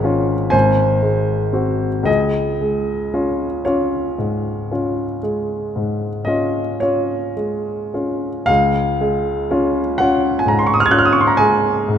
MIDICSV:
0, 0, Header, 1, 2, 480
1, 0, Start_track
1, 0, Key_signature, -5, "major"
1, 0, Tempo, 977199
1, 505, Tempo, 1050788
1, 984, Time_signature, 12, 3, 24, 8
1, 2905, Tempo, 1100917
1, 3865, Tempo, 1018676
1, 4345, Tempo, 946372
1, 5602, End_track
2, 0, Start_track
2, 0, Title_t, "Grand piano"
2, 0, Program_c, 0, 0
2, 0, Control_c, 0, 64, 127
2, 0, Note_on_c, 0, 32, 56
2, 0, Note_on_c, 0, 56, 42
2, 0, Note_on_c, 0, 73, 70
2, 0, Note_on_c, 0, 82, 91
2, 19, Note_on_c, 0, 61, 43
2, 23, Note_on_c, 0, 65, 46
2, 168, Note_off_c, 0, 56, 0
2, 240, Note_off_c, 0, 61, 0
2, 241, Note_off_c, 0, 73, 0
2, 242, Note_off_c, 0, 65, 0
2, 243, Note_off_c, 0, 32, 0
2, 246, Note_on_c, 0, 80, 76
2, 253, Note_on_c, 0, 72, 65
2, 256, Note_off_c, 0, 82, 0
2, 259, Note_on_c, 0, 32, 57
2, 272, Control_c, 0, 64, 0
2, 345, Control_c, 0, 64, 127
2, 503, Note_on_c, 0, 56, 41
2, 733, Note_on_c, 0, 60, 36
2, 737, Note_on_c, 0, 66, 40
2, 884, Note_off_c, 0, 56, 0
2, 961, Note_off_c, 0, 72, 0
2, 962, Note_off_c, 0, 60, 0
2, 963, Note_on_c, 0, 37, 45
2, 964, Note_off_c, 0, 32, 0
2, 964, Note_off_c, 0, 66, 0
2, 974, Note_on_c, 0, 75, 73
2, 977, Note_off_c, 0, 80, 0
2, 979, Note_on_c, 0, 68, 49
2, 991, Control_c, 0, 64, 0
2, 1072, Control_c, 0, 64, 127
2, 1228, Note_on_c, 0, 56, 33
2, 1468, Note_on_c, 0, 61, 34
2, 1469, Note_on_c, 0, 65, 36
2, 1613, Note_off_c, 0, 56, 0
2, 1688, Note_off_c, 0, 68, 0
2, 1690, Note_off_c, 0, 61, 0
2, 1690, Note_off_c, 0, 65, 0
2, 1702, Note_on_c, 0, 73, 52
2, 1704, Note_off_c, 0, 75, 0
2, 1707, Note_on_c, 0, 65, 39
2, 1712, Note_on_c, 0, 61, 36
2, 1931, Note_off_c, 0, 61, 0
2, 1947, Note_on_c, 0, 44, 34
2, 2185, Note_off_c, 0, 65, 0
2, 2189, Note_on_c, 0, 61, 28
2, 2192, Note_on_c, 0, 65, 34
2, 2333, Note_off_c, 0, 44, 0
2, 2400, Note_off_c, 0, 37, 0
2, 2411, Note_off_c, 0, 61, 0
2, 2412, Note_off_c, 0, 65, 0
2, 2425, Note_on_c, 0, 56, 34
2, 2666, Note_on_c, 0, 44, 32
2, 2807, Note_off_c, 0, 56, 0
2, 2889, Note_on_c, 0, 75, 63
2, 2900, Note_on_c, 0, 61, 33
2, 2902, Note_on_c, 0, 65, 36
2, 3045, Note_off_c, 0, 44, 0
2, 3119, Note_off_c, 0, 61, 0
2, 3120, Note_off_c, 0, 65, 0
2, 3125, Note_off_c, 0, 73, 0
2, 3131, Note_off_c, 0, 75, 0
2, 3131, Note_on_c, 0, 73, 53
2, 3139, Note_on_c, 0, 61, 34
2, 3141, Note_on_c, 0, 65, 37
2, 3362, Note_off_c, 0, 61, 0
2, 3363, Note_off_c, 0, 65, 0
2, 3378, Note_on_c, 0, 56, 33
2, 3628, Note_on_c, 0, 61, 30
2, 3629, Note_on_c, 0, 65, 29
2, 3771, Note_off_c, 0, 56, 0
2, 3848, Note_off_c, 0, 61, 0
2, 3848, Note_off_c, 0, 65, 0
2, 3854, Note_on_c, 0, 77, 86
2, 3861, Note_off_c, 0, 73, 0
2, 3863, Note_on_c, 0, 37, 55
2, 3874, Control_c, 0, 64, 0
2, 3969, Control_c, 0, 64, 127
2, 4112, Note_on_c, 0, 56, 47
2, 4348, Note_on_c, 0, 61, 45
2, 4351, Note_on_c, 0, 65, 48
2, 4495, Note_off_c, 0, 56, 0
2, 4571, Note_off_c, 0, 61, 0
2, 4573, Note_off_c, 0, 65, 0
2, 4584, Note_off_c, 0, 77, 0
2, 4587, Note_on_c, 0, 78, 83
2, 4599, Note_on_c, 0, 65, 49
2, 4600, Note_on_c, 0, 61, 47
2, 4796, Note_on_c, 0, 80, 65
2, 4802, Note_off_c, 0, 78, 0
2, 4811, Note_off_c, 0, 65, 0
2, 4812, Note_off_c, 0, 61, 0
2, 4830, Note_on_c, 0, 44, 46
2, 4842, Note_on_c, 0, 82, 64
2, 4859, Note_off_c, 0, 80, 0
2, 4895, Note_on_c, 0, 84, 63
2, 4901, Note_off_c, 0, 82, 0
2, 4935, Note_on_c, 0, 85, 68
2, 4945, Note_off_c, 0, 84, 0
2, 4971, Note_on_c, 0, 87, 64
2, 4980, Note_off_c, 0, 85, 0
2, 5005, Note_on_c, 0, 89, 68
2, 5011, Note_off_c, 0, 87, 0
2, 5032, Note_on_c, 0, 92, 65
2, 5042, Note_off_c, 0, 89, 0
2, 5058, Note_on_c, 0, 61, 40
2, 5060, Note_on_c, 0, 65, 42
2, 5060, Note_on_c, 0, 90, 66
2, 5070, Note_off_c, 0, 92, 0
2, 5097, Note_on_c, 0, 89, 63
2, 5099, Note_off_c, 0, 90, 0
2, 5132, Note_on_c, 0, 87, 66
2, 5135, Note_off_c, 0, 89, 0
2, 5168, Note_on_c, 0, 85, 65
2, 5172, Note_off_c, 0, 87, 0
2, 5205, Note_off_c, 0, 44, 0
2, 5209, Note_on_c, 0, 84, 60
2, 5212, Note_off_c, 0, 85, 0
2, 5243, Note_on_c, 0, 82, 63
2, 5254, Note_off_c, 0, 84, 0
2, 5279, Note_off_c, 0, 37, 0
2, 5279, Note_off_c, 0, 61, 0
2, 5280, Note_off_c, 0, 65, 0
2, 5293, Note_off_c, 0, 82, 0
2, 5293, Note_on_c, 0, 80, 88
2, 5305, Note_on_c, 0, 56, 47
2, 5553, Note_on_c, 0, 44, 44
2, 5602, Note_off_c, 0, 44, 0
2, 5602, Note_off_c, 0, 56, 0
2, 5602, Note_off_c, 0, 80, 0
2, 5602, End_track
0, 0, End_of_file